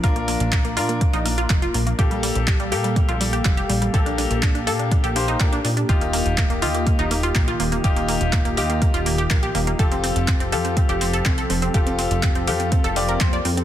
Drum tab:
HH |xxoxxxoxxxoxxxox|xxoxxxoxxxoxxxox|xxoxxxoxxxoxxxox|xxoxxxoxxxoxxxox|
CP |----x-------x---|----x-------x---|----x-------x---|----x-------x---|
BD |o---o---o---o---|o---o---o---o---|o---o---o---o---|o---o---o---o---|

HH |xxoxxxoxxxoxxxox|xxoxxxoxxxoxxxox|xxoxxxoxxxoxxxox|
CP |----x-------x---|----x-------x---|----x-------x---|
BD |o---o---o---o---|o---o---o---o---|o---o---o---o---|